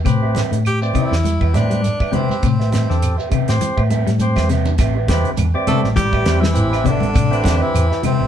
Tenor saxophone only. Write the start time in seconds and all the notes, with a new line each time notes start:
0.67 G4
0.95 E4
1.55 D4
2.15 C4
2.31 C4
5.67 A4
5.96 G4
6.40 E4
6.86 D4
7.62 E4
8.06 C4